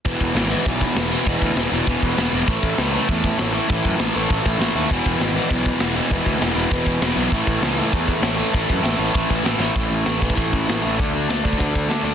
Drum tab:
CC |x---x---x---x---|x---x---x---x---|x---x---x---x---|x---x---x---x---|
HH |----------------|----------------|----------------|----------------|
SD |----o-------o---|----o-------o---|----o-------o---|----o-------o---|
BD |o-o-----o-o-----|o-o-----o-o-----|o-o-----o-o-----|o-o-----o-o-----|

CC |x---x---x---x---|x---x---x---x---|x---x---x---x---|x---x---x---x---|
HH |----------------|----------------|----------------|----------------|
SD |----o-------o---|----o-------o---|----o-------o---|----o-------o-o-|
BD |o-o-----o-o-----|o-o-----o-o-----|o-o-----o-o-----|o-o-----o-o-----|

CC |----------------|----------------|
HH |o-o-o-o-o-o-o-o-|o-o-o-o-o---o-o-|
SD |----o-------o---|----o-------o---|
BD |o-----ooo-o-----|o-----ooo-o-----|